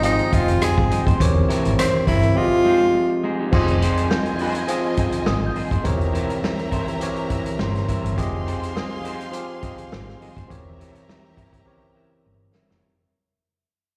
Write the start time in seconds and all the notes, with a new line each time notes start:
Already playing: G#1 F3 C4 G4 G#4 D#5
0.02 F3 C4 D#4 G#4 D#5 F5 G5, muted clean electric guitar stroke, closed hi-hat
0.19 closed hi-hat
0.32 F1 D#4 F4 G#4 D#5, kick, closed hi-hat
0.48 muted clean electric guitar stroke, closed hi-hat
0.61 G#4, muted clean electric guitar stroke, muted fingered electric bass stroke, cross-stick, closed hi-hat, tambourine
0.77 G1, muted clean electric guitar stroke, kick
0.91 D#4 G#4 D#5 G5, closed hi-hat
1.07 F1 D#4 G#4 C5, kick, closed hi-hat
1.19 E1 E3 C4 G4 A#4 C#5, kick, closed hi-hat
1.49 E4 A#4 C#5, closed hi-hat
1.65 G#1, closed hi-hat
1.79 C4, muted clean electric guitar stroke, cross-stick, closed hi-hat, tambourine
1.94 muted clean electric guitar stroke, muted fingered electric bass stroke
2.07 G1 E4 A#4 C#5, kick, open hi-hat
2.23 muted clean electric guitar stroke, closed hi-hat
2.35 F3 C4 F4 G4 G#4 D#5, muted clean electric guitar stroke
2.52 muted clean electric guitar stroke
2.65 G#3 D#4 G#4
2.81 muted clean electric guitar stroke
2.94 muted clean electric guitar stroke
3.10 muted clean electric guitar stroke
3.24 G#3 D#4 G#4
3.39 G#3 D#4 G4
3.52 F1 F3 C4 F4 G#4 D#5 G#5 C6, kick, crash
3.68 closed hi-hat
3.81 D#4 G#4 C5, closed hi-hat
3.97 closed hi-hat
4.10 G6, muted clean electric guitar stroke, snare
4.26 muted clean electric guitar stroke, closed hi-hat
4.39 D#4 G#4 C5, open hi-hat
4.55 muted clean electric guitar stroke, closed hi-hat
4.68 F3 C4 F4 G#4 D#5, muted clean electric guitar stroke, closed hi-hat
4.97 D#4 G#4 D#5, kick, closed hi-hat
5.12 muted clean electric guitar stroke, closed hi-hat
5.26 G#1 D#6, muted clean electric guitar stroke, snare
5.42 muted clean electric guitar stroke
5.47 G6
5.55 D#4 G#4 D#5, open hi-hat
5.71 F1 D#4 G#4 C5, kick, closed hi-hat
5.84 E1 E3 C4 G4 A#4 C#5 E5 A#5, kick, closed hi-hat
6.01 closed hi-hat
6.14 E4 A#4 C#5, closed hi-hat
6.30 closed hi-hat
6.43 muted clean electric guitar stroke, snare
6.59 muted clean electric guitar stroke, closed hi-hat
6.71 E4 A#4 C#5, kick, closed hi-hat
6.87 muted clean electric guitar stroke, closed hi-hat
7.00 E3 C4 G4 A#4 C#5, muted clean electric guitar stroke, closed hi-hat
7.16 closed hi-hat
7.30 E4 A#4 E5, kick, closed hi-hat
7.46 muted clean electric guitar stroke, closed hi-hat
7.59 G1 C6, muted clean electric guitar stroke, snare
7.75 muted clean electric guitar stroke, snare, closed hi-hat
7.88 E4 A#4 E5, kick, closed hi-hat
8.03 G1 E4 A#4 C#5, closed hi-hat
8.17 F1 F3 C4 G4 G#4 D#5 F5 C6, kick, closed hi-hat
8.46 D#4 G#4 C5, closed hi-hat
8.63 closed hi-hat
8.75 D#6, muted clean electric guitar stroke, snare
8.92 muted clean electric guitar stroke
9.05 D#4 G#4 C5, closed hi-hat
9.21 muted clean electric guitar stroke, closed hi-hat
9.32 F3 C4 G4 G#4 F5, muted clean electric guitar stroke, closed hi-hat
9.63 D#4 G#4 D#5, kick, closed hi-hat
9.78 muted clean electric guitar stroke, closed hi-hat
9.92 G#1, muted clean electric guitar stroke, snare
10.07 muted clean electric guitar stroke, snare
10.21 D#4 G#4 D#5, open hi-hat
10.37 F1 D#4 G#4 C5, kick, closed hi-hat
10.48 E1 E3 C4 G4 A#4 C#5 E5 A#5, kick, closed hi-hat
10.79 E4 A#4 C#5, closed hi-hat
10.95 closed hi-hat
11.09 muted clean electric guitar stroke, snare
11.24 muted clean electric guitar stroke
11.37 E4 A#4 C#5, kick, closed hi-hat
11.53 muted clean electric guitar stroke, kick, closed hi-hat
11.65 C#3 C4 G4 A#4 C#5, muted clean electric guitar stroke
11.71 E3
11.95 E4 A#4 E5
12.12 muted clean electric guitar stroke
12.25 G1, muted clean electric guitar stroke
12.41 muted clean electric guitar stroke
12.54 E4 A#4 E5, snare
12.70 F1 E4 A#4 C#5, snare